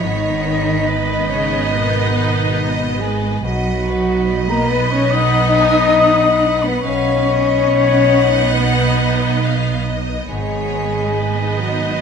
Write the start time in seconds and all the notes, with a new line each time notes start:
Already playing: D#3 B3 D#4 B4 C#5 D#5 B5
0.01 G#1 G#2 D#3 B3 D#4 D#5 B5
0.24 B3
0.45 B4
0.66 D#4
0.87 B4 D#5
1.09 B5
1.27 C#3 C#4 C#5 D#5
1.51 B4
1.71 B2 D#3 B3 B4 D#5
1.93 B3
2.14 B4
2.35 D#4
2.57 D#5
2.78 B5
2.99 G#3 G#4 B4 D#5 G#5
3.23 B4
3.42 B1 B2 F#3 B3 D#4 F#4 D#5 F#5 B5
3.66 B3
3.87 B4
4.08 D#4
4.29 D#5
4.49 A#3 A#4 A#5
4.70 B3 B4 D#5 B5
4.90 C#4 B4 C#5 C#6
5.10 F#3 D#4 F#5 D#6
5.15 D#5
5.35 B3
5.57 B4 G#5
6.00 F#5
6.62 B3 B4 B5
6.81 B1 C#4 D#5 B5 C#6
6.85 B2 B3 D#4 C#5 D#5 F5
7.08 B3
7.28 B4 D#5
7.50 D#4
7.70 D#5 F#5
8.34 B4
8.54 F#3 B3 B4 B5
8.77 B3
8.99 B4
9.21 D#4
9.42 D#5 F5
9.85 D#5
10.08 B4
10.28 G#1 G#2 G#3 B3 D#4 G#4 C#5 D#5 G#5 B5
10.51 B3
10.74 B4
10.95 D#4
11.17 B4 D#5
11.39 G#5
11.60 F#3 F#4 D#5 F#5
11.84 B4